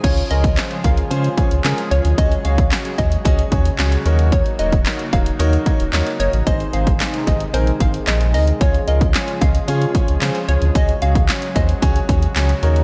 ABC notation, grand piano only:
X:1
M:4/4
L:1/8
Q:1/4=112
K:Db
V:1 name="Grand piano"
[DFAd] [DFAB] [DFAc] [DFAB] [DFAc] [DFAd] [DFAB] [DFAd] | [DGAd] [DGAd] [DGAd] [DGAd] [DGAe] [DGAd] [DGAd] [EGBd]- | [EGBd] [EGBd] [EGBd] [EGBd] [EGBd] [EGBd] [EGBd] [EGBe] | [CEAc] [CEAc] [CEAc] [CEAe] [CEAB] [CEAc] [CEAc] [CEAB] |
[DFAd] [DFAB] [DFAd] [DFAe] [DFAd] [DFAd] [DFAc] [DFAd] | [DGAd] [DGAd] [DGAd] [DGAc] [DGAd] [DGAd] [DGAd] [EGBd] |]